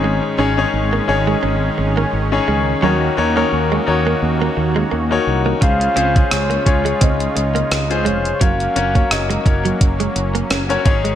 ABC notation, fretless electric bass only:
X:1
M:4/4
L:1/8
Q:"Swing 16ths" 1/4=86
K:Gblyd
V:1 name="Fretless electric bass" clef=bass
A,,, A,,, A,,, A,,, A,,, A,,, A,,, D,, | E,, E,, E,, E,, E,, E,, E,, C,, | D,, D,, D,, D,, D,, D,, D,, F,,, | G,,, G,,, G,,, G,,, G,,, G,,, G,,, A,,, |]